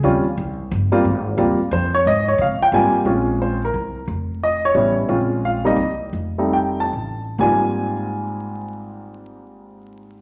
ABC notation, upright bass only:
X:1
M:3/4
L:1/8
Q:"Swing" 1/4=178
K:Ab
V:1 name="Upright bass" clef=bass
E,,2 C,,2 G,,,2 | A,,,2 E,, z F,,2 | A,,2 C, z A,, z | B,,,4 C,,2 |
F,,,4 =A,,,2 | B,,,4 C,,2 | F,,,4 =A,,,2 | A,,,6- |
A,,,6 |]